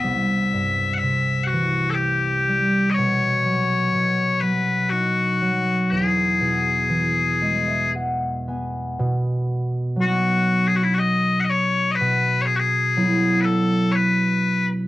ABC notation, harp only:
X:1
M:3/4
L:1/16
Q:1/4=61
K:E
V:1 name="Harp"
z12 | z12 | z6 d e f2 g2 | z12 |
z12 |]
V:2 name="Harp" clef=bass
=C,,2 =G,,2 =C,2 E,4 =G,2 | B,,2 F,2 B,,2 F,2 D2 F,2 | E,,2 B,,2 E,2 G,4 B,2 | B,,4 [F,B,D]8 |
B,,4 [F,B,E]8 |]